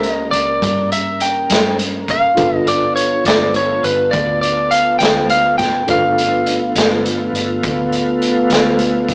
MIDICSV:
0, 0, Header, 1, 6, 480
1, 0, Start_track
1, 0, Tempo, 583658
1, 1950, Time_signature, 12, 3, 24, 8
1, 7518, End_track
2, 0, Start_track
2, 0, Title_t, "Lead electric guitar"
2, 0, Program_c, 0, 29
2, 0, Note_on_c, 0, 76, 79
2, 101, Note_off_c, 0, 76, 0
2, 101, Note_on_c, 0, 75, 79
2, 228, Note_off_c, 0, 75, 0
2, 257, Note_on_c, 0, 74, 89
2, 757, Note_off_c, 0, 74, 0
2, 760, Note_on_c, 0, 76, 74
2, 1001, Note_on_c, 0, 79, 69
2, 1002, Note_off_c, 0, 76, 0
2, 1442, Note_off_c, 0, 79, 0
2, 1734, Note_on_c, 0, 77, 80
2, 2104, Note_off_c, 0, 77, 0
2, 2104, Note_on_c, 0, 75, 80
2, 2206, Note_on_c, 0, 74, 67
2, 2216, Note_off_c, 0, 75, 0
2, 2428, Note_off_c, 0, 74, 0
2, 2432, Note_on_c, 0, 73, 74
2, 2678, Note_off_c, 0, 73, 0
2, 2685, Note_on_c, 0, 74, 79
2, 2925, Note_off_c, 0, 74, 0
2, 2930, Note_on_c, 0, 73, 75
2, 3161, Note_on_c, 0, 71, 78
2, 3167, Note_off_c, 0, 73, 0
2, 3379, Note_off_c, 0, 71, 0
2, 3380, Note_on_c, 0, 74, 83
2, 3621, Note_off_c, 0, 74, 0
2, 3630, Note_on_c, 0, 74, 77
2, 3872, Note_on_c, 0, 77, 80
2, 3878, Note_off_c, 0, 74, 0
2, 4099, Note_off_c, 0, 77, 0
2, 4102, Note_on_c, 0, 79, 94
2, 4354, Note_off_c, 0, 79, 0
2, 4361, Note_on_c, 0, 77, 86
2, 4586, Note_off_c, 0, 77, 0
2, 4589, Note_on_c, 0, 79, 79
2, 4837, Note_off_c, 0, 79, 0
2, 4854, Note_on_c, 0, 77, 73
2, 6250, Note_off_c, 0, 77, 0
2, 7518, End_track
3, 0, Start_track
3, 0, Title_t, "Tine electric piano"
3, 0, Program_c, 1, 4
3, 0, Note_on_c, 1, 58, 42
3, 0, Note_on_c, 1, 64, 39
3, 0, Note_on_c, 1, 67, 38
3, 0, Note_on_c, 1, 70, 48
3, 1905, Note_off_c, 1, 58, 0
3, 1909, Note_off_c, 1, 64, 0
3, 1913, Note_off_c, 1, 67, 0
3, 1917, Note_off_c, 1, 70, 0
3, 1930, Note_on_c, 1, 62, 42
3, 1938, Note_on_c, 1, 65, 43
3, 1946, Note_on_c, 1, 69, 38
3, 1952, Note_on_c, 1, 71, 49
3, 4788, Note_off_c, 1, 62, 0
3, 4792, Note_off_c, 1, 65, 0
3, 4796, Note_off_c, 1, 69, 0
3, 4799, Note_off_c, 1, 71, 0
3, 4822, Note_on_c, 1, 62, 39
3, 4829, Note_on_c, 1, 65, 37
3, 4832, Note_on_c, 1, 69, 40
3, 4841, Note_on_c, 1, 71, 46
3, 7518, Note_off_c, 1, 62, 0
3, 7518, Note_off_c, 1, 65, 0
3, 7518, Note_off_c, 1, 69, 0
3, 7518, Note_off_c, 1, 71, 0
3, 7518, End_track
4, 0, Start_track
4, 0, Title_t, "Tonewheel organ"
4, 0, Program_c, 2, 16
4, 0, Note_on_c, 2, 49, 55
4, 0, Note_on_c, 2, 70, 60
4, 1915, Note_off_c, 2, 70, 0
4, 1916, Note_off_c, 2, 49, 0
4, 1938, Note_on_c, 2, 65, 60
4, 1944, Note_on_c, 2, 69, 60
4, 1946, Note_on_c, 2, 59, 61
4, 4796, Note_off_c, 2, 65, 0
4, 4799, Note_off_c, 2, 69, 0
4, 4800, Note_off_c, 2, 59, 0
4, 4834, Note_on_c, 2, 59, 63
4, 4841, Note_on_c, 2, 57, 61
4, 4841, Note_on_c, 2, 65, 58
4, 7518, Note_off_c, 2, 57, 0
4, 7518, Note_off_c, 2, 59, 0
4, 7518, Note_off_c, 2, 65, 0
4, 7518, End_track
5, 0, Start_track
5, 0, Title_t, "Fingered electric bass"
5, 0, Program_c, 3, 33
5, 0, Note_on_c, 3, 37, 72
5, 230, Note_off_c, 3, 37, 0
5, 265, Note_on_c, 3, 37, 76
5, 487, Note_off_c, 3, 37, 0
5, 511, Note_on_c, 3, 43, 88
5, 1197, Note_off_c, 3, 43, 0
5, 1232, Note_on_c, 3, 43, 76
5, 1918, Note_off_c, 3, 43, 0
5, 1959, Note_on_c, 3, 31, 78
5, 2642, Note_off_c, 3, 31, 0
5, 2667, Note_on_c, 3, 31, 82
5, 3116, Note_off_c, 3, 31, 0
5, 3153, Note_on_c, 3, 31, 76
5, 3372, Note_off_c, 3, 31, 0
5, 3403, Note_on_c, 3, 38, 78
5, 4084, Note_off_c, 3, 38, 0
5, 4114, Note_on_c, 3, 38, 79
5, 4800, Note_off_c, 3, 38, 0
5, 4841, Note_on_c, 3, 31, 79
5, 5523, Note_off_c, 3, 31, 0
5, 5550, Note_on_c, 3, 31, 74
5, 5998, Note_off_c, 3, 31, 0
5, 6023, Note_on_c, 3, 31, 73
5, 6248, Note_off_c, 3, 31, 0
5, 6282, Note_on_c, 3, 38, 77
5, 6964, Note_off_c, 3, 38, 0
5, 6989, Note_on_c, 3, 38, 75
5, 7518, Note_off_c, 3, 38, 0
5, 7518, End_track
6, 0, Start_track
6, 0, Title_t, "Drums"
6, 27, Note_on_c, 9, 42, 50
6, 109, Note_off_c, 9, 42, 0
6, 271, Note_on_c, 9, 42, 55
6, 353, Note_off_c, 9, 42, 0
6, 512, Note_on_c, 9, 36, 67
6, 515, Note_on_c, 9, 42, 75
6, 594, Note_off_c, 9, 36, 0
6, 597, Note_off_c, 9, 42, 0
6, 755, Note_on_c, 9, 42, 53
6, 838, Note_off_c, 9, 42, 0
6, 989, Note_on_c, 9, 42, 52
6, 1072, Note_off_c, 9, 42, 0
6, 1232, Note_on_c, 9, 42, 84
6, 1254, Note_on_c, 9, 38, 96
6, 1314, Note_off_c, 9, 42, 0
6, 1336, Note_off_c, 9, 38, 0
6, 1473, Note_on_c, 9, 42, 59
6, 1555, Note_off_c, 9, 42, 0
6, 1712, Note_on_c, 9, 42, 51
6, 1713, Note_on_c, 9, 36, 60
6, 1795, Note_off_c, 9, 42, 0
6, 1796, Note_off_c, 9, 36, 0
6, 1951, Note_on_c, 9, 42, 64
6, 1955, Note_on_c, 9, 36, 97
6, 2033, Note_off_c, 9, 42, 0
6, 2037, Note_off_c, 9, 36, 0
6, 2196, Note_on_c, 9, 42, 55
6, 2278, Note_off_c, 9, 42, 0
6, 2440, Note_on_c, 9, 42, 53
6, 2522, Note_off_c, 9, 42, 0
6, 2674, Note_on_c, 9, 42, 69
6, 2697, Note_on_c, 9, 38, 100
6, 2757, Note_off_c, 9, 42, 0
6, 2779, Note_off_c, 9, 38, 0
6, 2913, Note_on_c, 9, 42, 44
6, 2995, Note_off_c, 9, 42, 0
6, 3158, Note_on_c, 9, 42, 48
6, 3240, Note_off_c, 9, 42, 0
6, 3397, Note_on_c, 9, 42, 61
6, 3399, Note_on_c, 9, 36, 69
6, 3479, Note_off_c, 9, 42, 0
6, 3481, Note_off_c, 9, 36, 0
6, 3642, Note_on_c, 9, 42, 52
6, 3724, Note_off_c, 9, 42, 0
6, 3876, Note_on_c, 9, 42, 53
6, 3958, Note_off_c, 9, 42, 0
6, 4113, Note_on_c, 9, 42, 76
6, 4135, Note_on_c, 9, 38, 94
6, 4195, Note_off_c, 9, 42, 0
6, 4217, Note_off_c, 9, 38, 0
6, 4355, Note_on_c, 9, 42, 60
6, 4437, Note_off_c, 9, 42, 0
6, 4596, Note_on_c, 9, 42, 48
6, 4599, Note_on_c, 9, 36, 64
6, 4618, Note_on_c, 9, 38, 26
6, 4678, Note_off_c, 9, 42, 0
6, 4681, Note_off_c, 9, 36, 0
6, 4700, Note_off_c, 9, 38, 0
6, 4835, Note_on_c, 9, 42, 70
6, 4840, Note_on_c, 9, 36, 92
6, 4917, Note_off_c, 9, 42, 0
6, 4922, Note_off_c, 9, 36, 0
6, 5085, Note_on_c, 9, 42, 61
6, 5167, Note_off_c, 9, 42, 0
6, 5316, Note_on_c, 9, 42, 54
6, 5398, Note_off_c, 9, 42, 0
6, 5556, Note_on_c, 9, 42, 78
6, 5578, Note_on_c, 9, 38, 98
6, 5638, Note_off_c, 9, 42, 0
6, 5660, Note_off_c, 9, 38, 0
6, 5802, Note_on_c, 9, 42, 54
6, 5884, Note_off_c, 9, 42, 0
6, 6044, Note_on_c, 9, 42, 55
6, 6126, Note_off_c, 9, 42, 0
6, 6277, Note_on_c, 9, 42, 67
6, 6279, Note_on_c, 9, 36, 73
6, 6360, Note_off_c, 9, 42, 0
6, 6361, Note_off_c, 9, 36, 0
6, 6516, Note_on_c, 9, 42, 50
6, 6599, Note_off_c, 9, 42, 0
6, 6758, Note_on_c, 9, 42, 46
6, 6840, Note_off_c, 9, 42, 0
6, 6990, Note_on_c, 9, 42, 67
6, 7012, Note_on_c, 9, 38, 87
6, 7072, Note_off_c, 9, 42, 0
6, 7095, Note_off_c, 9, 38, 0
6, 7227, Note_on_c, 9, 42, 51
6, 7309, Note_off_c, 9, 42, 0
6, 7472, Note_on_c, 9, 36, 60
6, 7474, Note_on_c, 9, 42, 52
6, 7518, Note_off_c, 9, 36, 0
6, 7518, Note_off_c, 9, 42, 0
6, 7518, End_track
0, 0, End_of_file